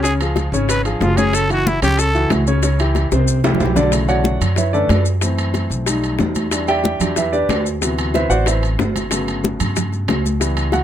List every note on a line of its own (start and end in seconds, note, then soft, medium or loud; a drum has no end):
0.00 0.47 C#2 medium
0.00 0.13 G#4 medium
0.04 0.18 C#3 medium
0.04 0.18 C#4 medium
0.04 0.18 C#5 medium
0.04 high bongo medium
0.04 high conga soft
0.04 high timbale medium
0.04 maracas medium
0.20 0.48 F3 medium
0.20 0.48 F4 medium
0.20 0.48 G#4 medium
0.20 high bongo soft
0.20 high conga soft
0.20 high timbale medium
0.20 maracas soft
0.36 high bongo medium
0.36 high conga medium
0.36 high timbale medium
0.36 low timbale medium
0.36 maracas soft
0.52 0.98 G#1 medium
0.52 0.80 C#3 medium
0.52 0.80 C#4 medium
0.52 0.80 C#5 medium
0.52 high bongo soft
0.52 maracas medium
0.69 0.84 B4 medium
0.69 high bongo medium
0.69 high conga soft
0.69 high timbale medium
0.69 maracas medium
0.85 0.99 F3 medium
0.85 1.01 D4 soft
0.85 0.99 F4 medium
0.85 0.99 G#4 medium
0.85 high bongo soft
0.85 high conga soft
0.85 high timbale medium
0.85 maracas soft
1.01 1.76 F#1 medium
1.01 1.15 F3 medium
1.01 1.18 F4 medium
1.01 1.15 F4 medium
1.01 1.15 G#4 medium
1.01 high bongo medium
1.01 low bongo medium
1.01 high conga medium
1.01 low timbale medium
1.01 maracas soft
1.17 1.44 C#3 medium
1.17 1.44 C#4 medium
1.17 1.36 G#4 medium
1.17 1.44 C#5 medium
1.17 high conga medium
1.17 high timbale medium
1.17 maracas medium
1.33 1.50 A4 loud
1.33 high bongo medium
1.33 high conga soft
1.33 high timbale medium
1.33 maracas medium
1.50 1.76 E3 medium
1.50 1.77 E4 medium
1.50 1.77 F#4 medium
1.50 1.69 F#4 medium
1.50 high bongo soft
1.50 high conga soft
1.50 high timbale medium
1.50 maracas soft
1.66 1.82 E4 medium
1.66 high bongo medium
1.66 high conga loud
1.66 low timbale medium
1.66 maracas soft
1.82 2.27 C#2 loud
1.82 2.09 C#3 medium
1.82 2.09 C#4 medium
1.82 2.01 G4 loud
1.82 2.09 C#5 medium
1.82 high bongo soft
1.82 high conga soft
1.82 low conga medium
1.82 high timbale medium
1.82 maracas medium
1.97 2.31 A4 medium
1.97 high bongo medium
1.97 high conga soft
1.97 high timbale medium
1.97 maracas medium
2.15 2.41 E3 medium
2.15 2.41 E4 medium
2.15 2.42 F#4 medium
2.15 high bongo soft
2.15 high conga soft
2.15 maracas soft
2.30 3.06 C#2 medium
2.30 high bongo medium
2.30 low bongo medium
2.30 high conga medium
2.30 high timbale medium
2.30 low timbale medium
2.30 maracas soft
2.47 2.61 C#3 medium
2.47 2.61 C#4 medium
2.47 2.61 C#5 medium
2.47 maracas medium
2.63 2.77 C#3 medium
2.63 2.77 C#4 medium
2.63 2.77 C#5 medium
2.63 high bongo medium
2.63 high conga soft
2.63 high timbale medium
2.63 maracas medium
2.79 3.06 E3 medium
2.79 3.06 E4 medium
2.79 3.07 G4 medium
2.79 high bongo soft
2.79 high conga soft
2.79 high timbale loud
2.79 maracas soft
2.95 high bongo medium
2.95 high conga medium
2.95 high timbale medium
2.95 low timbale medium
2.95 maracas soft
3.12 3.57 C2 loud
3.12 3.39 C3 medium
3.12 3.39 C4 medium
3.12 3.39 C5 medium
3.12 high bongo medium
3.12 high timbale medium
3.12 maracas medium
3.28 high conga soft
3.28 maracas medium
3.44 3.57 E3 medium
3.44 3.57 E4 medium
3.44 3.58 G4 medium
3.44 low bongo medium
3.44 high conga medium
3.44 low timbale loud
3.44 maracas soft
3.55 low conga loud
3.60 4.36 B1 loud
3.60 3.73 E3 medium
3.60 3.73 E4 medium
3.60 3.74 G4 medium
3.60 low timbale medium
3.60 maracas soft
3.66 low conga medium
3.76 3.89 D3 medium
3.76 3.90 D4 medium
3.76 3.90 D5 medium
3.76 low bongo loud
3.76 low conga medium
3.76 low timbale medium
3.76 maracas medium
3.92 4.39 C#3 medium
3.92 4.38 D3 medium
3.92 4.38 E3 soft
3.92 4.39 A3 soft
3.92 high bongo medium
3.92 high conga soft
3.92 high timbale medium
3.92 maracas medium
4.08 4.54 F#4 medium
4.08 4.54 C#5 medium
4.08 4.54 D5 medium
4.08 4.54 F#5 medium
4.08 high bongo soft
4.08 high conga soft
4.08 high timbale medium
4.08 maracas soft
4.24 high bongo medium
4.24 high conga loud
4.24 low timbale medium
4.24 maracas soft
4.41 4.86 F#2 medium
4.41 high bongo soft
4.41 high conga soft
4.41 low conga medium
4.41 high timbale medium
4.41 maracas medium
4.56 4.74 E4 medium
4.56 4.72 B4 medium
4.56 4.74 C#5 medium
4.56 4.73 E5 medium
4.56 high bongo medium
4.56 high conga soft
4.56 low conga medium
4.56 high timbale medium
4.56 maracas medium
4.73 4.88 D3 soft
4.73 4.88 E3 soft
4.73 4.88 A3 soft
4.73 4.88 C#4 medium
4.73 5.04 D4 medium
4.73 5.04 A4 medium
4.73 5.04 B4 medium
4.73 5.04 D5 medium
4.73 high bongo soft
4.73 high conga soft
4.73 maracas soft
4.89 5.65 F#2 medium
4.89 high bongo medium
4.89 low bongo medium
4.89 high conga medium
4.89 high timbale medium
4.89 low timbale medium
4.89 maracas soft
5.05 maracas medium
5.21 5.84 E3 medium
5.21 5.84 A3 soft
5.21 5.85 C4 medium
5.21 high bongo medium
5.21 high conga soft
5.21 high timbale medium
5.21 maracas medium
5.38 high bongo soft
5.38 high conga soft
5.38 high timbale medium
5.38 maracas soft
5.54 high bongo medium
5.54 high conga medium
5.54 high timbale medium
5.54 low timbale medium
5.54 maracas soft
5.70 6.16 B1 medium
5.70 high bongo soft
5.70 maracas medium
5.86 6.49 G3 medium
5.86 6.49 A3 soft
5.86 6.49 D#4 medium
5.86 high bongo medium
5.86 high conga soft
5.86 high timbale medium
5.86 maracas medium
6.02 high bongo soft
6.02 high conga soft
6.02 high timbale medium
6.02 maracas soft
6.19 6.95 E2 medium
6.19 high bongo medium
6.19 low bongo medium
6.19 high conga medium
6.19 low timbale medium
6.19 maracas soft
6.35 high conga medium
6.35 high timbale medium
6.35 maracas medium
6.51 6.98 E3 soft
6.51 6.98 G3 soft
6.51 6.98 D4 medium
6.51 high bongo medium
6.51 high conga soft
6.51 high timbale loud
6.51 maracas medium
6.68 7.14 G4 medium
6.68 7.14 D5 medium
6.68 7.14 E5 medium
6.68 7.14 G5 loud
6.68 high bongo soft
6.68 high conga soft
6.68 high timbale medium
6.68 maracas soft
6.84 high bongo medium
6.84 high conga loud
6.84 low timbale medium
6.84 maracas soft
7.00 7.46 E2 medium
7.00 7.15 F#3 soft
7.00 7.16 G3 soft
7.00 7.16 D4 medium
7.00 high bongo soft
7.00 high conga soft
7.00 low conga medium
7.00 high timbale medium
7.00 maracas medium
7.16 7.33 E4 medium
7.16 7.31 G4 medium
7.16 7.31 B4 medium
7.16 7.33 E5 medium
7.16 high bongo medium
7.16 high conga soft
7.16 low conga medium
7.16 high timbale medium
7.16 maracas medium
7.33 7.63 D4 medium
7.33 7.63 G4 medium
7.33 7.63 B4 medium
7.33 7.63 D5 medium
7.33 high bongo soft
7.33 high conga soft
7.33 maracas soft
7.49 8.25 D2 medium
7.49 high bongo medium
7.49 low bongo medium
7.49 high conga medium
7.49 high timbale medium
7.49 low timbale medium
7.49 maracas soft
7.66 maracas medium
7.81 9.07 C3 medium
7.81 9.07 E3 medium
7.81 9.08 F#3 soft
7.81 9.08 B3 medium
7.81 high bongo medium
7.81 high conga soft
7.81 high timbale medium
7.81 maracas medium
7.98 high bongo soft
7.98 high conga soft
7.98 high timbale medium
7.98 maracas soft
8.14 8.30 E4 medium
8.14 8.30 B4 medium
8.14 8.29 C5 medium
8.14 8.30 E5 medium
8.14 high bongo medium
8.14 high conga medium
8.14 high timbale medium
8.14 low timbale medium
8.14 maracas soft
8.30 8.75 A1 medium
8.30 8.46 F#4 medium
8.30 8.46 C5 medium
8.30 8.46 D5 medium
8.30 8.46 F#5 loud
8.30 high bongo soft
8.30 maracas medium
8.46 8.63 E4 medium
8.46 8.63 B4 medium
8.46 8.63 C5 medium
8.46 8.62 E5 medium
8.46 high bongo medium
8.46 high conga soft
8.46 high timbale medium
8.46 maracas medium
8.62 high bongo soft
8.62 high conga soft
8.62 high timbale medium
8.62 maracas soft
8.79 9.54 G1 medium
8.79 high bongo medium
8.79 low bongo medium
8.79 high conga medium
8.79 low timbale medium
8.79 maracas soft
8.96 high conga medium
8.96 high timbale medium
8.96 maracas medium
9.11 10.36 C#3 medium
9.11 10.37 F#3 soft
9.11 10.37 A3 soft
9.11 10.37 B3 medium
9.11 high bongo medium
9.11 high conga soft
9.11 high timbale loud
9.11 maracas medium
9.28 high bongo soft
9.28 high conga soft
9.28 high timbale medium
9.28 maracas soft
9.44 high bongo medium
9.44 high conga medium
9.44 low timbale medium
9.44 maracas soft
9.60 10.05 G2 medium
9.60 high bongo soft
9.60 high conga soft
9.60 low conga medium
9.60 high timbale medium
9.60 maracas medium
9.76 high bongo medium
9.76 high conga soft
9.76 low conga medium
9.76 high timbale medium
9.76 maracas medium
9.92 high bongo soft
9.92 high conga soft
9.92 maracas soft
10.08 10.83 C#2 medium
10.08 high bongo medium
10.08 low bongo medium
10.08 high conga medium
10.08 high timbale medium
10.08 low timbale medium
10.08 maracas soft
10.26 high conga medium
10.26 maracas medium
10.40 10.84 E3 medium
10.40 10.84 G3 soft
10.40 10.84 B3 medium
10.40 high bongo medium
10.40 high timbale medium
10.40 maracas medium
10.57 high bongo soft
10.57 high conga soft
10.57 high timbale medium
10.57 maracas soft
10.72 10.84 F#4 medium
10.72 10.84 F#5 medium
10.72 high bongo medium
10.72 high conga medium
10.72 high timbale medium
10.72 low timbale medium
10.72 maracas soft